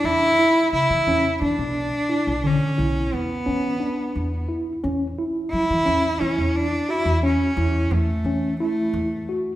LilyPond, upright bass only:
\new Staff \with { instrumentName = "Upright bass" } { \clef bass \time 7/8 \key a \major \tempo 4 = 88 e,8 r8 cis16 e16 e,16 r16 e16 b,,8 r8 b,,16~ | b,,16 r16 b,,8 e,16 r16 e8 r8 e,8 r8 | e,8 r8 fis16 e16 e,16 r16 e16 e,8 r8 e,16~ | e,16 r16 e,8 e,16 r16 e8 r8 e,8 r8 | }